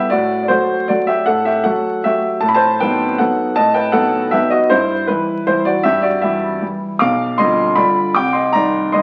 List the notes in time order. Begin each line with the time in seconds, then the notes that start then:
0.10 A2 F#4 D5
0.43 D5
0.48 F#3 A3 F#4 C5
0.88 F#3 A3 F#4 D5
1.07 G4 E5
1.26 A2 A4 F#5
1.45 G4 E5
1.64 F#3 A3 F#4 A4 F#5
2.04 F#3 A3 F#4 G4 E5
2.41 A2 A5
2.49 B5
2.55 C5 A5
2.80 F#3 B3 D#4 B4 G5
3.18 F#3 B3 D#4 A4 F#5
3.56 A2 D#5 A5
3.74 B4 G5
3.92 F#3 B3 D#4 A4 F#5
4.31 F#3 B3 D#4 G4 E5
4.50 F#4 D#5
4.70 G2 E4 C5
5.07 E3 G3 E4 B4
5.47 E3 G3 E4 C5
5.65 F#4 D5
5.83 G2 G4 E5
6.02 F#4 D5
6.22 E3 G3 E4 G4 E5
6.61 E3 G3 E4
6.99 B1 F5 D6
7.38 D3 G3 F4 D#5 C6
7.75 D3 G3 F4 D5 B5
8.15 C2 G5 D6
8.33 D#5 C6
8.53 D#3 G3 D#4 D5 A#5
8.92 D#3 G3 D#4 D#5 C6